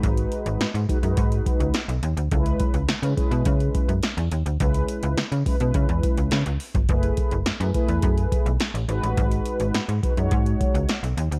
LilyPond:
<<
  \new Staff \with { instrumentName = "Analog polysynth" } { \time 4/4 \key cis \minor \tempo 4 = 105 <gis dis' fis' b'>4 r8 <gis dis' fis' b'>16 <gis dis' fis' ais' b'>4~ <gis dis' fis' ais' b'>16 r4 | <gis cis' e' a' b'>8. r8 <gis cis' e' b'>16 <gis cis' e' b'>4~ <gis cis' e' b'>16 r4 r16 | <gis cis' e' b'>4 r8 <gis cis' e' b'>16 <gis cis' e' b'>4~ <gis cis' e' b'>16 r4 | <a e' gis' b'>8. r8 <a e' gis' b'>16 <a e' gis' b'>4~ <a e' gis' b'>16 r8. <gis dis' fis' b'>8~ |
<gis dis' fis' b'>4 r8 <gis dis' fis' b'>16 <gis dis' fis' cis''>4~ <gis dis' fis' cis''>16 r4 | }
  \new Staff \with { instrumentName = "FM bass" } { \clef bass \time 4/4 \key cis \minor gis,,8 r16 gis,,16 gis,16 gis,16 r16 fis,16 gis,8 r16 cis,16 r16 b,,16 dis,16 d,16 | cis,8 r16 cis,16 cis16 cis16 r16 b,16 cis8 r16 fis,16 r16 e,16 dis,16 d,16 | cis,8 r16 cis,16 cis16 cis16 r16 b,16 cis16 e,16 r16 cis,16 cis16 cis,16 r16 g,,16 | fis,,8 r16 fis,,16 fis,16 fis,16 r16 e,16 fis,8 r16 b,,16 r16 a,,16 gis,,16 a,,16 |
gis,,8 r16 gis,,16 gis,16 gis,16 r16 fis,16 gis,8 r16 cis,16 r16 b,,16 dis,16 d,16 | }
  \new DrumStaff \with { instrumentName = "Drums" } \drummode { \time 4/4 <hh bd>16 hh16 hh16 hh16 <hh sn>16 hh16 <hh bd>16 hh16 <hh bd>16 hh16 <hh bd>16 hh16 <hh sn>16 hh16 hh16 hh16 | <hh bd>16 hh16 <hh bd>16 hh16 <hh sn>16 hh16 <hh bd>16 hh16 <hh bd>16 hh16 <hh bd>16 hh16 <hh sn>16 hh16 hh16 hh16 | <hh bd>16 hh16 hh16 hh16 <hh sn>16 hh16 <hho bd>16 hh16 <hh bd>16 hh16 <hh bd>16 hh16 <hh sn>16 hh16 hho16 <hh bd>16 | <hh bd>16 hh16 <hh bd>16 hh16 <hh sn>16 hh16 <hh bd>16 hh16 <hh bd>16 hh16 <hh bd>16 hh16 <hh sn>16 hh16 hh16 hh16 |
<hh bd>16 hh16 hh16 hh16 <hh sn>16 hh16 <hh bd>16 hh16 <hh bd>16 hh16 <hh bd>16 hh16 <hh sn>16 hh16 hh16 hh16 | }
>>